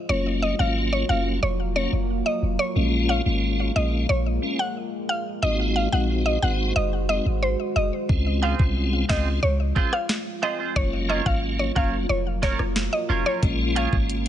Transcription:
Already playing: F4
0.09 F#1 F#3 A#3 C#4 F4 C#5
0.42 D#5
0.59 G#1 F#3 A#3 C#4 F4 F5
0.93 C#5
1.09 F#1 F#3 A#3 C#4 F4 F5
1.43 F1 C#5
1.76 F#3 A#3 C#4 F4 C#5
1.93 F#1
2.26 D#5
2.43 F1
2.59 C#5
2.76 A#1 G#3 A#3 C#4 F4
3.09 F5
3.26 G#1 G#3 A#3 C#4 F4
3.76 A#1 G#3 A#3 C#4 F4 D#5
4.09 A#1 C#5
4.42 G#3 A#3 C#4 F4
4.59 F#5
5.09 F5
5.42 G#1 D#3 G#3 C4 D#4 F#4 C5 D#5
5.76 F5
5.92 A#1 G#3 C4 D#4 F#4 F#5
6.26 D#5
6.42 G#1 G#3 C4 D#4 F#4 F#5
6.76 F#1 D#5
7.09 G#3 C4 D#4 F#4 D#5
7.26 G#1
7.43 C5
7.76 F#1 D#5
8.09 C#2 G#3 C4 C#4 F4, kick
8.42 C4 F4 G#4 C5 F5
8.59 C2 G#3 C4 C#4 F4, kick
9.09 C#2 G#3 C4 C#4 F4 G#4 C5 D#5, kick, snare
9.43 C#2 C#5
9.76 G#3 C4 C#4 F4 G#4 C5, kick
9.93 F5, cross-stick
10.09 snare
10.42 C4 F4 G#4 C5 D#5
10.59 C4 F4 G#4 C5
10.76 F#1 F#3 A#3 C#4 F4 C#5, kick
11.09 C#4 F4 A#4 C#5 D#5
11.26 G#1 F#3 A#3 C#4 F4 F5, kick
11.59 C#5
11.76 F#1 F#3 A#3 C#4 F4 A#4 C#5 F5, kick
12.09 F1 C#5
12.42 F#3 A#3 C#4 F4 A#4 C#5, kick, snare
12.59 F#1, cross-stick
12.76 snare
12.93 D#5
13.09 F1 C#4 F4 A#4 C#5
13.26 C#4 F4 A#4 C#5
13.42 A#1 C#3 G#3 A#3 C#4 F4, kick, closed hi-hat
13.76 A#3 F4 G#4 C#5 F5, closed hi-hat
13.92 G#1 G#3 A#3 C#4 F4, kick
14.10 closed hi-hat

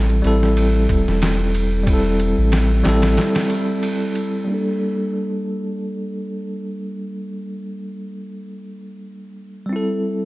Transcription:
Already playing: A1 G3 C4 E4 A4
0.09 ride
0.22 A1 G3 C4 E4, ride
0.27 A4
0.43 snare
0.57 ride
0.89 E1, kick, ride
1.08 E1, snare
1.22 snare, ride
1.55 ride
1.83 G3 C4, kick, ride
1.90 E4 A4
2.20 ride
2.38 A1
2.52 snare, ride
2.84 A1 G3 C4 E4, snare, ride
2.89 A4
3.02 snare, ride
3.17 snare, ride
3.35 snare, ride
3.50 ride
3.83 ride
4.15 ride
4.44 G3 A#3
4.51 D4 A4
9.66 G3 C4
9.73 E4 A4

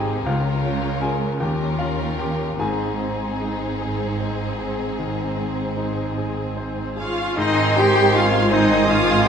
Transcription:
Already playing: G#1 G#2 C4 D#4 G4 G#4 A#4 C5 G5 G#5 A#5 C6
0.26 C#2 C#4 F4 A#4 F5
0.63 C#4
1.01 F4 G#4 A#4 G#5
1.39 D#2 C#4 F4 G4 A#4 G5
1.79 C#4 F4 F5
2.19 F4 G4 A#4 G5
2.59 G#1 G#2 C4 D#4 G#4 G#5
3.00 C4
3.41 D#4
3.81 G#4
4.20 C5
4.59 G#4
4.99 D#3
5.37 C4
5.77 D#4
6.17 G#4
6.57 C5
6.97 C#4 F4 G#4 F5
7.37 G#1 G#2 D#3 C4 D#4 D#5 G#5 C6
7.76 C4 D#4 G4 G5
8.14 C#4 D#4 F4 F5
8.51 D#3 C4 D#4 C5 D#5 C6 D#6
8.88 C#4 D#4 F4 F5
9.25 G5

